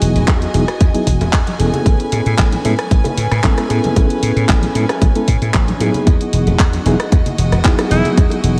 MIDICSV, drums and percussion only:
0, 0, Header, 1, 2, 480
1, 0, Start_track
1, 0, Key_signature, 4, "major"
1, 0, Tempo, 526316
1, 1694, Time_signature, 4, 2, 24, 8
1, 7840, End_track
2, 0, Start_track
2, 0, Title_t, "Drums"
2, 15, Note_on_c, 9, 46, 106
2, 106, Note_off_c, 9, 46, 0
2, 143, Note_on_c, 9, 42, 41
2, 234, Note_off_c, 9, 42, 0
2, 253, Note_on_c, 9, 60, 74
2, 254, Note_on_c, 9, 39, 116
2, 255, Note_on_c, 9, 36, 119
2, 256, Note_on_c, 9, 42, 64
2, 344, Note_off_c, 9, 60, 0
2, 345, Note_off_c, 9, 39, 0
2, 346, Note_off_c, 9, 36, 0
2, 347, Note_off_c, 9, 42, 0
2, 381, Note_on_c, 9, 42, 40
2, 473, Note_off_c, 9, 42, 0
2, 495, Note_on_c, 9, 46, 107
2, 586, Note_off_c, 9, 46, 0
2, 622, Note_on_c, 9, 37, 73
2, 622, Note_on_c, 9, 42, 38
2, 713, Note_off_c, 9, 37, 0
2, 713, Note_off_c, 9, 42, 0
2, 733, Note_on_c, 9, 60, 48
2, 735, Note_on_c, 9, 36, 120
2, 735, Note_on_c, 9, 42, 69
2, 824, Note_off_c, 9, 60, 0
2, 826, Note_off_c, 9, 36, 0
2, 826, Note_off_c, 9, 42, 0
2, 862, Note_on_c, 9, 42, 39
2, 954, Note_off_c, 9, 42, 0
2, 975, Note_on_c, 9, 36, 61
2, 975, Note_on_c, 9, 46, 108
2, 1066, Note_off_c, 9, 36, 0
2, 1066, Note_off_c, 9, 46, 0
2, 1103, Note_on_c, 9, 42, 41
2, 1105, Note_on_c, 9, 60, 77
2, 1194, Note_off_c, 9, 42, 0
2, 1197, Note_off_c, 9, 60, 0
2, 1213, Note_on_c, 9, 39, 127
2, 1215, Note_on_c, 9, 36, 121
2, 1215, Note_on_c, 9, 42, 65
2, 1304, Note_off_c, 9, 39, 0
2, 1306, Note_off_c, 9, 36, 0
2, 1306, Note_off_c, 9, 42, 0
2, 1342, Note_on_c, 9, 42, 41
2, 1349, Note_on_c, 9, 63, 68
2, 1433, Note_off_c, 9, 42, 0
2, 1440, Note_off_c, 9, 63, 0
2, 1456, Note_on_c, 9, 46, 112
2, 1547, Note_off_c, 9, 46, 0
2, 1582, Note_on_c, 9, 60, 55
2, 1582, Note_on_c, 9, 64, 85
2, 1584, Note_on_c, 9, 42, 43
2, 1673, Note_off_c, 9, 60, 0
2, 1673, Note_off_c, 9, 64, 0
2, 1675, Note_off_c, 9, 42, 0
2, 1695, Note_on_c, 9, 36, 118
2, 1697, Note_on_c, 9, 42, 65
2, 1786, Note_off_c, 9, 36, 0
2, 1788, Note_off_c, 9, 42, 0
2, 1822, Note_on_c, 9, 42, 39
2, 1914, Note_off_c, 9, 42, 0
2, 1935, Note_on_c, 9, 46, 106
2, 1938, Note_on_c, 9, 60, 67
2, 2026, Note_off_c, 9, 46, 0
2, 2029, Note_off_c, 9, 60, 0
2, 2062, Note_on_c, 9, 42, 39
2, 2154, Note_off_c, 9, 42, 0
2, 2174, Note_on_c, 9, 39, 120
2, 2175, Note_on_c, 9, 36, 123
2, 2176, Note_on_c, 9, 42, 64
2, 2265, Note_off_c, 9, 39, 0
2, 2266, Note_off_c, 9, 36, 0
2, 2267, Note_off_c, 9, 42, 0
2, 2299, Note_on_c, 9, 63, 65
2, 2303, Note_on_c, 9, 42, 40
2, 2390, Note_off_c, 9, 63, 0
2, 2394, Note_off_c, 9, 42, 0
2, 2415, Note_on_c, 9, 46, 113
2, 2419, Note_on_c, 9, 60, 46
2, 2507, Note_off_c, 9, 46, 0
2, 2510, Note_off_c, 9, 60, 0
2, 2541, Note_on_c, 9, 37, 74
2, 2541, Note_on_c, 9, 42, 36
2, 2633, Note_off_c, 9, 37, 0
2, 2633, Note_off_c, 9, 42, 0
2, 2655, Note_on_c, 9, 36, 123
2, 2655, Note_on_c, 9, 42, 63
2, 2746, Note_off_c, 9, 36, 0
2, 2746, Note_off_c, 9, 42, 0
2, 2774, Note_on_c, 9, 60, 71
2, 2783, Note_on_c, 9, 42, 38
2, 2786, Note_on_c, 9, 64, 78
2, 2866, Note_off_c, 9, 60, 0
2, 2874, Note_off_c, 9, 42, 0
2, 2877, Note_off_c, 9, 64, 0
2, 2896, Note_on_c, 9, 46, 106
2, 2987, Note_off_c, 9, 46, 0
2, 3023, Note_on_c, 9, 37, 65
2, 3023, Note_on_c, 9, 42, 40
2, 3114, Note_off_c, 9, 37, 0
2, 3114, Note_off_c, 9, 42, 0
2, 3134, Note_on_c, 9, 39, 121
2, 3135, Note_on_c, 9, 36, 127
2, 3136, Note_on_c, 9, 42, 65
2, 3225, Note_off_c, 9, 39, 0
2, 3226, Note_off_c, 9, 36, 0
2, 3227, Note_off_c, 9, 42, 0
2, 3261, Note_on_c, 9, 60, 53
2, 3262, Note_on_c, 9, 37, 57
2, 3262, Note_on_c, 9, 42, 39
2, 3352, Note_off_c, 9, 60, 0
2, 3354, Note_off_c, 9, 37, 0
2, 3354, Note_off_c, 9, 42, 0
2, 3376, Note_on_c, 9, 46, 110
2, 3467, Note_off_c, 9, 46, 0
2, 3502, Note_on_c, 9, 42, 39
2, 3508, Note_on_c, 9, 64, 88
2, 3511, Note_on_c, 9, 63, 63
2, 3593, Note_off_c, 9, 42, 0
2, 3599, Note_off_c, 9, 64, 0
2, 3603, Note_off_c, 9, 63, 0
2, 3613, Note_on_c, 9, 60, 74
2, 3615, Note_on_c, 9, 36, 123
2, 3615, Note_on_c, 9, 42, 66
2, 3705, Note_off_c, 9, 60, 0
2, 3706, Note_off_c, 9, 42, 0
2, 3707, Note_off_c, 9, 36, 0
2, 3742, Note_on_c, 9, 42, 38
2, 3833, Note_off_c, 9, 42, 0
2, 3855, Note_on_c, 9, 46, 109
2, 3946, Note_off_c, 9, 46, 0
2, 3982, Note_on_c, 9, 42, 37
2, 4073, Note_off_c, 9, 42, 0
2, 4094, Note_on_c, 9, 39, 109
2, 4095, Note_on_c, 9, 36, 120
2, 4095, Note_on_c, 9, 42, 58
2, 4096, Note_on_c, 9, 60, 48
2, 4185, Note_off_c, 9, 39, 0
2, 4186, Note_off_c, 9, 36, 0
2, 4187, Note_off_c, 9, 42, 0
2, 4187, Note_off_c, 9, 60, 0
2, 4220, Note_on_c, 9, 63, 66
2, 4221, Note_on_c, 9, 42, 38
2, 4311, Note_off_c, 9, 63, 0
2, 4312, Note_off_c, 9, 42, 0
2, 4335, Note_on_c, 9, 46, 104
2, 4426, Note_off_c, 9, 46, 0
2, 4462, Note_on_c, 9, 37, 80
2, 4462, Note_on_c, 9, 42, 36
2, 4467, Note_on_c, 9, 60, 70
2, 4553, Note_off_c, 9, 37, 0
2, 4553, Note_off_c, 9, 42, 0
2, 4558, Note_off_c, 9, 60, 0
2, 4574, Note_on_c, 9, 42, 61
2, 4575, Note_on_c, 9, 36, 119
2, 4666, Note_off_c, 9, 36, 0
2, 4666, Note_off_c, 9, 42, 0
2, 4701, Note_on_c, 9, 42, 36
2, 4792, Note_off_c, 9, 42, 0
2, 4813, Note_on_c, 9, 46, 102
2, 4815, Note_on_c, 9, 36, 58
2, 4904, Note_off_c, 9, 46, 0
2, 4906, Note_off_c, 9, 36, 0
2, 4941, Note_on_c, 9, 42, 37
2, 4943, Note_on_c, 9, 60, 46
2, 5033, Note_off_c, 9, 42, 0
2, 5035, Note_off_c, 9, 60, 0
2, 5053, Note_on_c, 9, 39, 117
2, 5054, Note_on_c, 9, 42, 60
2, 5055, Note_on_c, 9, 36, 126
2, 5144, Note_off_c, 9, 39, 0
2, 5146, Note_off_c, 9, 36, 0
2, 5146, Note_off_c, 9, 42, 0
2, 5182, Note_on_c, 9, 42, 36
2, 5184, Note_on_c, 9, 63, 75
2, 5273, Note_off_c, 9, 42, 0
2, 5275, Note_off_c, 9, 63, 0
2, 5294, Note_on_c, 9, 46, 109
2, 5298, Note_on_c, 9, 60, 72
2, 5385, Note_off_c, 9, 46, 0
2, 5390, Note_off_c, 9, 60, 0
2, 5419, Note_on_c, 9, 64, 70
2, 5421, Note_on_c, 9, 42, 39
2, 5510, Note_off_c, 9, 64, 0
2, 5512, Note_off_c, 9, 42, 0
2, 5534, Note_on_c, 9, 42, 63
2, 5535, Note_on_c, 9, 36, 115
2, 5625, Note_off_c, 9, 42, 0
2, 5626, Note_off_c, 9, 36, 0
2, 5661, Note_on_c, 9, 42, 38
2, 5752, Note_off_c, 9, 42, 0
2, 5773, Note_on_c, 9, 46, 102
2, 5864, Note_off_c, 9, 46, 0
2, 5900, Note_on_c, 9, 42, 37
2, 5903, Note_on_c, 9, 60, 49
2, 5991, Note_off_c, 9, 42, 0
2, 5994, Note_off_c, 9, 60, 0
2, 6013, Note_on_c, 9, 39, 107
2, 6015, Note_on_c, 9, 36, 117
2, 6015, Note_on_c, 9, 42, 61
2, 6104, Note_off_c, 9, 39, 0
2, 6106, Note_off_c, 9, 36, 0
2, 6106, Note_off_c, 9, 42, 0
2, 6141, Note_on_c, 9, 42, 38
2, 6145, Note_on_c, 9, 63, 58
2, 6232, Note_off_c, 9, 42, 0
2, 6236, Note_off_c, 9, 63, 0
2, 6254, Note_on_c, 9, 46, 101
2, 6259, Note_on_c, 9, 60, 74
2, 6346, Note_off_c, 9, 46, 0
2, 6351, Note_off_c, 9, 60, 0
2, 6382, Note_on_c, 9, 37, 79
2, 6382, Note_on_c, 9, 42, 37
2, 6473, Note_off_c, 9, 37, 0
2, 6473, Note_off_c, 9, 42, 0
2, 6494, Note_on_c, 9, 42, 63
2, 6495, Note_on_c, 9, 36, 114
2, 6585, Note_off_c, 9, 42, 0
2, 6586, Note_off_c, 9, 36, 0
2, 6621, Note_on_c, 9, 64, 79
2, 6622, Note_on_c, 9, 42, 36
2, 6713, Note_off_c, 9, 42, 0
2, 6713, Note_off_c, 9, 64, 0
2, 6734, Note_on_c, 9, 46, 99
2, 6735, Note_on_c, 9, 60, 49
2, 6826, Note_off_c, 9, 46, 0
2, 6826, Note_off_c, 9, 60, 0
2, 6861, Note_on_c, 9, 37, 68
2, 6861, Note_on_c, 9, 42, 38
2, 6953, Note_off_c, 9, 37, 0
2, 6953, Note_off_c, 9, 42, 0
2, 6973, Note_on_c, 9, 39, 109
2, 6975, Note_on_c, 9, 36, 115
2, 6975, Note_on_c, 9, 42, 62
2, 7064, Note_off_c, 9, 39, 0
2, 7066, Note_off_c, 9, 36, 0
2, 7066, Note_off_c, 9, 42, 0
2, 7101, Note_on_c, 9, 60, 77
2, 7102, Note_on_c, 9, 37, 65
2, 7102, Note_on_c, 9, 42, 39
2, 7192, Note_off_c, 9, 60, 0
2, 7193, Note_off_c, 9, 37, 0
2, 7193, Note_off_c, 9, 42, 0
2, 7215, Note_on_c, 9, 46, 105
2, 7306, Note_off_c, 9, 46, 0
2, 7336, Note_on_c, 9, 63, 54
2, 7338, Note_on_c, 9, 64, 72
2, 7342, Note_on_c, 9, 42, 41
2, 7428, Note_off_c, 9, 63, 0
2, 7429, Note_off_c, 9, 64, 0
2, 7434, Note_off_c, 9, 42, 0
2, 7456, Note_on_c, 9, 36, 120
2, 7456, Note_on_c, 9, 42, 65
2, 7547, Note_off_c, 9, 36, 0
2, 7547, Note_off_c, 9, 42, 0
2, 7570, Note_on_c, 9, 60, 53
2, 7582, Note_on_c, 9, 42, 39
2, 7661, Note_off_c, 9, 60, 0
2, 7673, Note_off_c, 9, 42, 0
2, 7695, Note_on_c, 9, 46, 99
2, 7786, Note_off_c, 9, 46, 0
2, 7840, End_track
0, 0, End_of_file